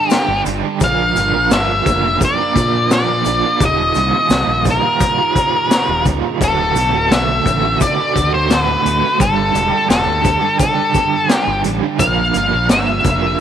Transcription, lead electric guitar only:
0.00 0.10 A4 medium
0.10 0.41 G4 medium
0.84 1.53 F5 medium
1.53 2.18 E5 medium
2.25 2.92 D5 medium
2.93 3.64 D5 medium
3.65 4.64 D#5 medium
4.70 6.04 A#4 medium
6.44 7.14 A4 medium
7.12 7.77 E5 medium
7.82 8.34 D5 medium
8.34 8.50 C5 medium
8.50 8.61 C5 medium
8.61 9.23 B4 medium
9.21 9.89 A4 medium
9.90 10.56 A4 medium
10.60 11.31 A4 medium
11.31 11.61 G4 medium
12.00 12.66 F5 medium
12.71 13.37 E5 medium

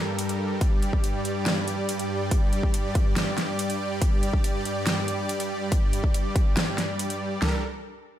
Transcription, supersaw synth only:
0.00 7.38 G2 medium
0.00 7.38 G3 medium
0.00 0.57 A4 medium
0.00 0.59 A#4 medium
0.61 7.38 G4 medium
0.61 7.40 D5 medium
7.42 7.62 G3 medium
7.42 7.62 D4 medium
7.42 7.62 A4 medium
7.42 7.62 A#4 medium

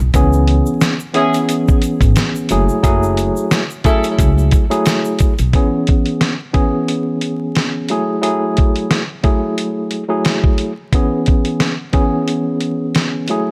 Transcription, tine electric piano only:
0.15 0.93 E3 medium
0.15 0.93 B3 medium
0.15 0.94 C#4 medium
0.15 0.94 G#4 loud
1.14 2.49 E3 medium
1.14 2.50 B3 medium
1.14 2.50 C#4 medium
1.14 2.50 G#4 loud
2.51 2.82 F#3 medium
2.51 2.82 A3 medium
2.51 2.82 E4 medium
2.51 2.82 G#4 loud
2.83 3.62 F#3 loud
2.83 3.62 A3 medium
2.83 3.62 E4 medium
2.83 3.62 G#4 loud
3.84 4.63 F#3 medium
3.84 4.63 A3 medium
3.84 4.64 E4 medium
3.84 4.64 G#4 loud
4.70 5.32 F#3 medium
4.70 5.32 A3 medium
4.70 5.32 E4 medium
4.70 5.32 G#4 loud
5.55 6.33 E3 medium
5.55 6.33 B3 medium
5.55 6.33 C#4 medium
5.55 6.33 G#4 medium
6.53 7.89 E3 medium
6.53 7.89 B3 medium
6.53 7.89 C#4 medium
6.53 7.89 G#4 loud
7.90 8.21 F#3 medium
7.90 8.21 A3 medium
7.90 8.21 E4 medium
7.90 8.22 G#4 medium
8.22 9.01 F#3 medium
8.22 9.01 A3 medium
8.22 9.02 E4 medium
8.22 9.02 G#4 medium
9.23 10.02 F#3 medium
9.23 10.03 A3 medium
9.23 10.03 E4 medium
9.23 10.03 G#4 loud
10.09 10.71 F#3 medium
10.09 10.71 A3 medium
10.09 10.71 E4 medium
10.09 10.72 G#4 loud
10.94 11.72 E3 medium
10.94 11.72 B3 medium
10.94 11.72 C#4 medium
10.94 11.73 G#4 loud
11.93 13.28 E3 medium
11.93 13.28 B3 medium
11.93 13.29 C#4 medium
11.93 13.29 G#4 loud
13.29 13.51 F#3 medium
13.29 13.51 A3 medium
13.29 13.51 E4 medium
13.29 13.51 G#4 medium

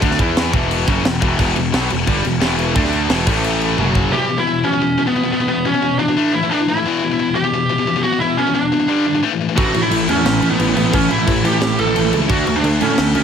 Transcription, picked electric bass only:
0.02 0.18 D2 loud
0.19 0.51 E2 loud
0.53 0.85 E1 loud
0.88 1.04 F#1 loud
1.06 1.21 E1 medium
1.22 1.38 E1 loud
1.39 1.55 E1 loud
1.57 1.73 E1 loud
1.74 1.89 B1 loud
1.91 2.07 E1 medium
2.08 2.23 G1 loud
2.25 2.41 E1 medium
2.42 2.74 E1 loud
2.75 3.07 D2 loud
3.11 3.26 E1 medium
3.27 3.75 A1 loud
3.78 4.10 F#1 loud
9.58 9.72 A1 loud
9.75 9.89 A1 loud
9.91 10.05 A1 loud
10.08 10.22 E2 medium
10.25 10.40 A1 medium
10.42 10.56 A1 loud
10.60 10.74 A1 loud
10.77 10.91 A1 medium
10.94 11.08 A1 loud
11.11 11.25 A1 loud
11.27 11.42 A1 medium
11.44 11.59 A1 medium
11.61 11.76 A1 medium
11.79 11.93 A1 loud
11.97 12.11 A1 loud
12.13 12.27 C#2 loud
12.30 12.44 D2 loud
12.47 12.61 D2 loud
12.64 12.78 D2 medium
12.82 12.96 A2 loud
12.99 13.13 D2 loud
13.15 13.23 D2 loud

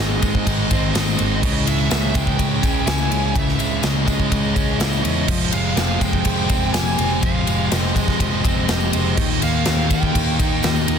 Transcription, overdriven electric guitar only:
0.00 0.71 G#2 medium
0.00 0.45 D#3 medium
0.00 0.22 G#3 medium
0.00 0.46 C4 medium
0.00 0.22 D#4 medium
0.22 1.65 G#3 medium
0.46 1.41 D#3 medium
0.70 1.15 C4 medium
0.93 1.42 D#4 medium
1.17 1.42 C4 medium
1.42 1.89 C#3 medium
1.65 2.13 G#3 medium
1.90 2.37 C#3 medium
2.13 3.57 G#3 medium
2.38 3.33 C#3 medium
2.62 3.08 C#4 medium
2.86 4.07 E4 medium
3.10 4.31 C#4 medium
3.34 3.81 C#3 medium
3.57 4.05 G#3 medium
3.83 4.28 C#3 medium
4.05 5.51 G#3 medium
4.29 5.26 C#3 medium
4.54 5.01 C#4 medium
4.78 5.27 E4 medium
5.02 5.28 C#4 medium
5.27 5.74 F3 medium
5.51 5.98 G#3 medium
5.75 6.22 F3 medium
5.99 7.21 G#3 medium
6.24 7.20 F3 medium
6.48 6.97 C4 medium
6.74 7.97 G4 medium
6.98 8.19 C4 medium
7.21 7.69 F3 medium
7.46 7.93 G#3 medium
7.70 8.18 F3 medium
7.94 9.16 G#3 medium
8.20 9.17 F3 medium
8.45 8.93 C4 medium
8.69 10.62 G4 medium
8.94 9.18 C4 medium
9.17 9.64 D#3 medium
9.41 9.88 A#3 medium
9.65 10.12 D#3 medium
9.90 10.99 A#3 medium
10.13 10.99 D#3 medium
10.39 10.86 D#4 medium
10.62 10.99 G4 medium
10.87 10.99 D#4 medium

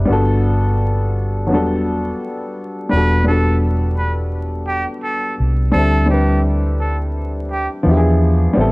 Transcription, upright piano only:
0.00 0.11 C3 medium
0.00 0.05 G3 medium
0.00 0.07 B3 medium
0.00 0.11 E4 medium
0.00 0.11 B4 loud
0.05 1.15 G3 medium
0.05 1.16 B3 medium
0.05 1.17 D4 medium
0.11 1.18 F#4 medium
0.11 1.19 A4 loud
1.47 1.56 F#3 medium
1.47 2.57 B3 medium
1.51 2.60 G3 medium
1.51 2.58 D4 medium
1.51 2.59 F#4 medium
1.51 2.60 A4 loud
2.89 3.18 G3 medium
2.89 3.19 B3 medium
2.89 3.20 D4 medium
2.95 3.21 F#4 medium
2.95 3.22 A4 medium
3.24 4.33 G3 medium
3.24 4.34 B3 medium
3.24 4.35 D4 medium
3.29 4.36 F#4 medium
3.29 4.37 A4 medium
5.71 6.00 G3 medium
5.71 6.02 C4 medium
5.71 6.02 D4 medium
5.77 6.03 E4 medium
5.77 6.04 A4 medium
6.06 7.15 G3 medium
6.06 7.16 C4 medium
6.10 7.17 D4 medium
6.10 7.18 E4 medium
6.10 7.19 B4 medium
7.83 8.42 F3 medium
7.83 8.43 B3 medium
7.83 8.44 D4 medium
7.89 8.45 E4 medium
7.89 7.95 G4 medium
7.97 8.49 G#4 loud
8.53 8.72 G3 medium
8.53 8.72 B3 medium
8.53 8.72 C4 medium
8.59 8.72 E4 medium
8.59 8.72 A4 loud

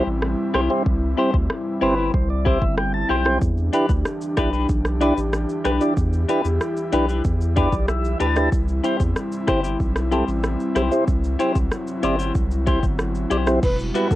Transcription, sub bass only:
0.07 0.35 A1 medium
0.54 0.69 B1 loud
0.86 1.15 C2 loud
1.34 1.48 D2 loud
1.82 2.11 G1 medium
2.14 2.57 C2 loud
2.62 3.05 G1 medium
3.10 3.38 B1 medium
3.42 3.70 E2 loud
3.89 4.04 D2 loud
4.37 4.66 B1 loud
4.69 5.12 B1 loud
5.17 5.46 A1 medium
5.65 5.79 B1 medium
5.97 6.25 E2 loud
6.45 6.59 E2 medium
6.93 7.21 B1 loud
7.25 7.67 E2 loud
7.73 8.15 B1 loud
8.20 8.49 D2 medium
8.52 8.81 C2 loud
9.00 9.14 E2 loud
9.48 9.77 G1 medium
9.80 10.23 B1 medium
10.28 10.56 A1 loud
10.76 10.90 B1 medium
11.08 11.36 C2 loud
11.55 11.70 C2 medium
12.03 12.32 G1 loud
12.35 12.78 C2 loud
12.83 13.26 G1 medium
13.31 13.59 B1 medium
13.63 13.91 E1 loud
14.11 14.15 G1 medium

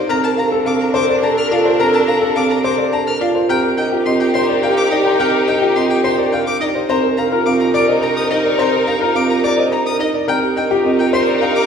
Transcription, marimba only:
0.00 0.14 G4 medium
0.10 0.28 C4 medium
0.24 0.42 A#4 medium
0.38 0.56 D4 medium
0.52 0.70 A4 medium
0.66 0.84 C4 medium
0.80 0.99 A4 medium
0.94 1.13 D4 medium
1.08 1.27 C5 medium
1.22 1.41 D4 medium
1.36 1.55 A#4 medium
1.51 1.69 F4 medium
1.65 1.83 A#4 medium
1.79 1.98 C4 medium
1.93 2.12 A#4 medium
2.08 2.26 D4 medium
2.21 2.40 A4 medium
2.36 2.54 C4 medium
2.50 2.69 A4 medium
2.65 2.83 D4 medium
2.78 2.97 C5 medium
2.93 3.11 D4 medium
3.07 3.25 A#4 medium
3.21 3.39 F4 medium
3.35 3.53 A#4 medium
3.49 3.67 C4 medium
3.63 3.82 G4 medium
3.77 3.96 D4 medium
3.91 4.10 F4 medium
4.06 4.24 C4 medium
4.20 4.38 F4 medium
4.34 4.52 D4 medium
4.48 4.67 A#4 medium
4.62 4.81 D4 medium
4.76 4.95 G4 medium
4.91 5.09 D#4 medium
5.05 5.23 G4 medium
5.19 5.37 C4 medium
5.33 5.51 G4 medium
5.62 5.80 F4 medium
5.75 5.94 C4 medium
5.90 6.08 F4 medium
6.18 6.36 A#4 medium
6.32 6.51 D4 medium
6.46 6.65 G4 medium
6.60 6.79 D#4 loud
6.74 6.93 G4 medium
6.89 7.07 C4 medium
7.03 7.21 A#4 medium
7.17 7.36 D4 medium
7.32 7.50 F4 medium
7.46 7.64 C4 medium
7.60 7.78 F4 medium
7.88 8.06 C5 medium
8.02 8.20 D4 medium
8.17 8.35 A#4 medium
8.31 8.49 D#4 medium
8.45 8.63 A#4 medium
8.59 8.77 C4 medium
8.73 8.91 A#4 medium
8.87 9.05 D4 medium
9.01 9.20 F4 medium
9.15 9.34 C4 medium
9.29 9.48 F4 medium
9.43 9.62 D4 medium
9.57 9.76 C5 medium
9.72 9.90 D4 medium
9.86 10.04 A#4 medium
9.99 10.18 D#4 loud
10.14 10.32 A#4 medium
10.28 10.47 C4 medium
10.42 10.61 G4 medium
10.56 10.75 D4 medium
10.70 10.89 F4 medium
10.85 11.03 C4 medium
10.99 11.17 F4 medium
11.27 11.46 A#4 medium
11.42 11.60 D4 medium
11.55 11.66 G4 medium

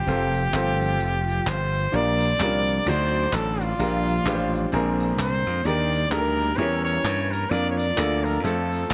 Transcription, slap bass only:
0.07 0.47 F1 loud
0.54 1.00 G1 medium
1.00 1.40 F1 medium
1.46 1.86 G1 medium
1.93 2.33 A#1 loud
2.40 2.79 C2 medium
2.86 3.26 D2 medium
3.32 3.72 A1 medium
3.79 4.19 A#1 loud
4.26 4.65 A1 loud
4.73 5.12 A#1 medium
5.19 5.42 C2 medium
5.47 5.63 F2 medium
5.65 6.05 D#2 loud
6.11 6.51 D2 medium
6.58 6.98 E2 loud
7.04 7.44 G2 medium
7.51 7.91 F2 loud
7.98 8.37 D2 medium
8.44 8.84 F2 medium
8.90 8.94 A1 medium

